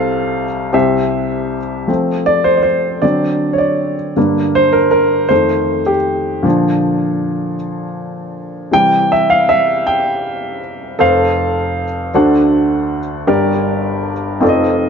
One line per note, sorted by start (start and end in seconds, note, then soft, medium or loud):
0.00 0.70 C2 medium
0.00 0.70 C3 medium
0.00 0.47 A4 medium
0.00 0.44 C5 medium
0.00 0.45 F5 medium
0.73 1.84 C2 medium
0.73 1.84 C3 medium
0.73 1.58 G4 medium
0.73 1.58 C5 medium
0.73 1.58 E5 medium
1.87 2.98 F3 soft
1.87 2.98 A3 soft
1.87 2.99 C4 medium
2.26 2.46 D5 medium
2.44 2.57 C5 medium
2.57 2.65 D5 medium
2.63 3.03 C5 medium
3.02 4.13 D3 soft
3.02 4.13 F#3 soft
3.02 4.13 C4 soft
3.02 3.54 D5 medium
3.53 3.60 C#5 medium
3.58 3.94 D5 medium
4.16 5.27 G2 soft
4.16 5.27 D3 soft
4.16 5.27 A#3 medium
4.55 4.75 C5 medium
4.73 4.90 A#4 medium
4.91 5.31 A#4 medium
5.29 5.81 F2 soft
5.29 5.81 D#3 soft
5.29 5.81 A3 medium
5.29 5.88 C5 medium
5.86 5.95 G4 medium
6.43 7.54 A#2 medium
6.43 7.54 D3 soft
6.43 7.54 F3 medium
8.71 10.96 C3 medium
8.71 10.97 E3 soft
8.71 10.97 G3 medium
8.71 9.12 G5 loud
9.12 9.31 E5 medium
9.30 9.48 F5 medium
9.49 9.84 E5 medium
9.87 10.59 G5 medium
10.99 12.10 F1 medium
10.99 12.10 F2 medium
10.99 11.84 A4 medium
10.99 11.84 C5 medium
10.99 11.85 F5 medium
12.14 13.24 D2 medium
12.14 13.24 D3 medium
12.14 12.98 D4 medium
12.14 12.98 F#4 medium
12.14 12.98 A4 medium
12.14 12.99 C5 medium
12.14 12.99 F#5 medium
13.27 14.38 G1 medium
13.27 14.38 G2 medium
13.27 14.12 G4 medium
13.27 14.12 A#4 medium
13.27 14.12 D5 medium
14.40 14.89 F1 medium
14.40 14.89 F2 medium
14.40 14.89 C4 medium
14.40 14.89 D#4 medium
14.40 14.89 F4 medium
14.40 14.89 A4 medium
14.40 14.49 D5 medium
14.49 14.89 D#5 medium